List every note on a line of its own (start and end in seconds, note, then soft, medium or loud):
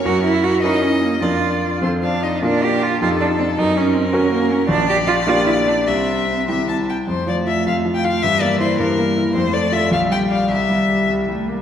0.05 0.61 F#2 medium
0.05 0.24 F#4 medium
0.05 0.62 A#4 medium
0.24 0.45 E4 medium
0.44 0.63 F#4 medium
0.63 1.19 C#4 soft
0.63 0.83 D#4 medium
0.63 1.19 E4 soft
0.63 1.19 A#4 soft
0.63 1.24 D#5 medium
0.82 1.02 C#4 medium
1.03 1.22 A#3 medium
1.21 1.80 F2 soft
1.21 1.78 D4 soft
1.21 1.78 F4 soft
1.21 1.82 F4 medium
1.21 1.78 A#4 soft
1.21 1.78 D5 soft
1.81 2.40 F2 soft
1.81 2.38 C4 soft
1.81 2.38 F4 soft
1.81 2.39 A4 soft
1.81 1.91 C5 soft
2.03 2.24 D4 medium
2.03 2.24 F5 soft
2.22 2.42 D#4 medium
2.22 2.42 D#5 soft
2.42 2.99 A#2 soft
2.42 2.97 D4 soft
2.42 2.65 D4 medium
2.42 2.97 F4 soft
2.42 2.97 A#4 medium
2.42 2.97 A#4 soft
2.64 2.84 G4 medium
2.83 3.01 F4 medium
3.01 3.56 F2 medium
3.01 3.54 D#4 soft
3.01 3.10 F4 medium
3.01 3.54 G4 soft
3.01 3.60 A4 medium
3.01 3.54 A4 soft
3.21 3.28 D4 medium
3.39 3.46 C4 medium
3.58 4.12 F#2 medium
3.58 3.78 D#4 medium
3.58 4.69 A#4 medium
3.77 3.95 C#4 medium
3.94 4.15 C4 medium
4.13 4.65 C#4 soft
4.13 4.31 C#4 medium
4.13 4.65 F#4 soft
4.13 4.66 A#4 medium
4.32 4.53 A#3 medium
4.51 4.69 C#4 medium
4.68 5.25 A#1 medium
4.68 4.88 D4 medium
4.68 5.89 D5 medium
4.89 4.97 G4 medium
5.07 5.15 F4 medium
5.27 5.83 A#3 soft
5.27 5.83 D4 soft
5.27 5.35 F4 medium
5.27 5.84 G4 soft
5.46 5.54 E4 medium
5.67 5.75 D4 medium
5.86 6.46 C2 soft
5.86 6.86 C4 medium
5.86 6.44 E5 medium
6.48 7.04 G3 soft
6.48 7.04 E4 soft
6.48 7.05 G4 soft
6.48 6.67 E5 soft
6.69 6.77 A5 soft
6.90 6.97 G5 soft
7.08 7.65 F2 soft
7.08 8.25 A3 soft
7.08 7.26 C5 medium
7.27 7.58 F3 soft
7.27 7.36 D5 medium
7.47 7.77 F4 soft
7.47 7.66 E5 medium
7.66 8.21 F2 soft
7.66 7.75 F5 medium
7.85 8.15 F3 soft
7.95 8.06 G5 medium
8.04 8.23 F4 soft
8.04 8.24 F5 medium
8.22 8.78 G2 soft
8.22 9.35 E3 soft
8.22 8.42 E5 medium
8.41 8.71 A#3 soft
8.41 8.60 D5 medium
8.60 8.90 E4 soft
8.60 8.79 C5 medium
8.79 9.33 G2 soft
8.79 9.34 A#4 medium
8.97 9.27 A#3 soft
9.17 9.35 E4 soft
9.35 9.90 F2 soft
9.35 9.94 A3 medium
9.35 9.54 C5 medium
9.53 9.84 A3 soft
9.53 9.74 D5 medium
9.72 9.89 F4 soft
9.72 9.90 A4 soft
9.72 9.92 E5 medium
9.91 10.48 A#1 soft
9.91 10.50 G3 soft
9.91 10.00 F5 medium
10.10 10.42 G3 soft
10.10 10.19 G5 medium
10.31 10.48 G4 soft
10.31 10.48 D5 soft
10.31 10.50 F5 medium
10.50 11.07 C2 soft
10.50 11.04 G3 soft
10.50 11.08 E5 medium
10.69 11.01 G3 soft
10.89 11.21 G4 soft
11.08 11.62 C2 soft
11.08 11.28 G3 soft
11.29 11.61 G3 soft
11.29 11.50 A3 soft
11.49 11.62 A#3 soft
11.49 11.62 G4 soft